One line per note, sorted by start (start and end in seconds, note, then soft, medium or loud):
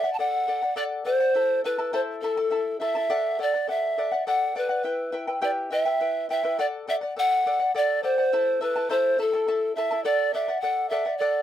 0.00 0.12 E5 medium
0.00 0.19 F#5 medium
0.05 0.18 D5 soft
0.13 0.21 A5 medium
0.19 0.47 A4 medium
0.19 0.47 D5 medium
0.19 0.76 F#5 loud
0.19 0.48 F#5 medium
0.48 0.63 A4 medium
0.48 0.62 D5 medium
0.48 0.61 F#5 medium
0.62 0.75 D5 soft
0.62 0.76 F#5 soft
0.76 1.04 A4 medium
0.76 1.05 D5 medium
0.76 0.84 D5 medium
0.76 1.05 F#5 medium
1.05 1.21 A4 medium
1.05 1.61 C5 medium
1.05 1.20 D5 medium
1.05 1.19 F#5 medium
1.20 1.35 D5 soft
1.20 1.35 F#5 medium
1.35 1.64 E4 medium
1.35 1.64 A4 medium
1.35 1.63 E5 medium
1.35 1.65 A5 medium
1.64 1.78 E4 medium
1.64 1.78 A4 medium
1.64 1.92 B4 medium
1.64 1.79 E5 medium
1.64 1.77 A5 medium
1.78 1.92 E4 soft
1.78 1.92 A4 medium
1.78 1.93 A5 medium
1.93 2.22 E4 medium
1.93 2.23 A4 medium
1.93 2.23 C5 medium
1.93 2.01 C5 medium
1.93 2.22 E5 medium
1.93 2.23 A5 medium
2.22 2.37 E4 medium
2.22 2.77 A4 medium
2.22 2.37 A4 medium
2.22 2.38 E5 medium
2.22 2.36 A5 medium
2.37 2.50 E4 soft
2.37 2.51 A4 soft
2.37 2.51 A5 medium
2.50 2.80 E4 medium
2.50 2.80 A4 medium
2.50 2.79 E5 medium
2.50 2.80 A5 medium
2.80 2.95 E4 medium
2.80 2.95 A4 medium
2.80 2.95 E5 medium
2.80 3.43 E5 loud
2.80 2.94 A5 medium
2.95 3.11 E4 soft
2.95 3.08 A4 medium
2.95 3.10 A5 medium
3.10 3.38 A4 medium
3.10 3.38 D5 medium
3.10 3.39 F#5 medium
3.39 3.54 A4 medium
3.39 3.54 D5 medium
3.39 3.71 D5 medium
3.39 3.53 F#5 medium
3.54 3.67 D5 soft
3.54 3.68 F#5 medium
3.67 3.96 A4 medium
3.67 3.97 D5 soft
3.67 4.26 E5 loud
3.67 3.98 F#5 medium
3.98 4.12 A4 medium
3.98 4.12 D5 medium
3.98 4.10 F#5 medium
4.12 4.26 D5 soft
4.12 4.26 F#5 medium
4.27 4.54 A4 medium
4.27 4.55 D5 medium
4.27 4.59 F#5 medium
4.27 4.56 F#5 medium
4.55 4.70 A4 medium
4.55 5.15 B4 medium
4.55 4.69 D5 medium
4.55 4.68 F#5 medium
4.69 4.84 D5 soft
4.69 4.84 F#5 medium
4.83 5.11 E4 medium
4.83 5.12 B4 medium
4.83 5.11 E5 medium
4.83 5.13 G5 medium
5.12 5.28 E4 medium
5.12 5.27 B4 medium
5.12 5.28 E5 medium
5.12 5.26 G5 medium
5.27 5.41 E4 soft
5.27 5.41 B4 soft
5.27 5.41 G5 medium
5.41 5.70 E4 medium
5.41 5.71 G4 medium
5.41 5.71 B4 medium
5.41 5.50 D5 medium
5.41 5.69 E5 medium
5.41 5.71 G5 medium
5.71 5.86 E4 medium
5.71 5.85 B4 medium
5.71 5.86 E5 medium
5.71 6.26 E5 loud
5.71 5.84 G5 medium
5.85 5.99 E4 soft
5.85 6.00 B4 soft
5.85 6.00 G5 medium
6.00 6.29 E4 medium
6.00 6.29 B4 medium
6.00 6.28 E5 medium
6.00 6.29 G5 medium
6.29 6.43 E4 medium
6.29 6.43 B4 medium
6.29 6.44 E5 medium
6.29 6.57 E5 medium
6.29 6.42 G5 medium
6.43 6.59 E4 medium
6.43 6.58 B4 medium
6.43 6.58 G5 medium
6.58 6.86 A4 medium
6.58 6.87 D5 medium
6.58 6.66 D5 loud
6.58 6.87 F#5 medium
6.87 7.02 A4 medium
6.87 7.02 D5 medium
6.87 6.96 E5 loud
6.87 7.00 F#5 medium
7.01 7.16 D5 soft
7.01 7.16 F#5 medium
7.16 7.45 A4 medium
7.16 7.46 D5 medium
7.16 7.46 F#5 medium
7.16 7.72 F#5 loud
7.46 7.60 A4 medium
7.46 7.60 D5 medium
7.46 7.58 F#5 medium
7.60 7.74 D5 soft
7.60 7.74 F#5 medium
7.75 8.02 A4 medium
7.75 8.03 D5 medium
7.75 8.03 D5 loud
7.75 8.03 F#5 medium
8.03 8.18 A4 medium
8.03 8.64 C5 loud
8.03 8.18 D5 medium
8.03 8.17 F#5 medium
8.18 8.33 D5 soft
8.18 8.32 F#5 medium
8.33 8.60 E4 medium
8.33 8.61 A4 medium
8.33 8.60 E5 medium
8.33 8.61 A5 medium
8.61 8.76 E4 medium
8.61 8.75 A4 medium
8.61 8.92 B4 medium
8.61 8.75 E5 medium
8.61 8.74 A5 medium
8.76 8.89 E4 soft
8.76 8.89 A4 soft
8.76 8.90 A5 medium
8.89 9.18 E4 medium
8.89 9.18 A4 medium
8.89 9.19 C5 medium
8.89 9.22 C5 medium
8.89 9.17 E5 medium
8.89 9.19 A5 medium
9.18 9.33 E4 medium
9.18 9.33 A4 medium
9.18 9.75 A4 medium
9.18 9.33 E5 medium
9.18 9.32 A5 medium
9.33 9.47 E4 soft
9.33 9.47 A4 medium
9.33 9.47 A5 medium
9.48 9.76 E4 medium
9.48 9.77 A4 medium
9.48 9.75 E5 medium
9.48 9.77 A5 medium
9.75 9.91 E4 medium
9.75 9.91 A4 medium
9.75 10.03 E5 medium
9.75 9.91 E5 medium
9.75 9.90 A5 medium
9.91 10.06 E4 soft
9.91 10.03 A4 medium
9.91 10.05 A5 medium
10.04 10.33 A4 medium
10.04 10.32 D5 loud
10.04 10.34 D5 medium
10.04 10.34 F#5 loud
10.34 10.48 A4 medium
10.34 10.49 D5 medium
10.34 10.62 E5 medium
10.34 10.47 F#5 medium
10.48 10.62 D5 soft
10.48 10.63 F#5 medium
10.60 10.90 A4 medium
10.60 10.91 D5 medium
10.60 10.89 F#5 loud
10.60 10.91 F#5 medium
10.89 11.06 A4 medium
10.89 11.06 D5 medium
10.89 11.19 E5 loud
10.89 11.05 F#5 medium
11.06 11.20 D5 soft
11.06 11.20 F#5 medium
11.18 11.42 A4 medium
11.18 11.42 D5 medium
11.18 11.42 F#5 medium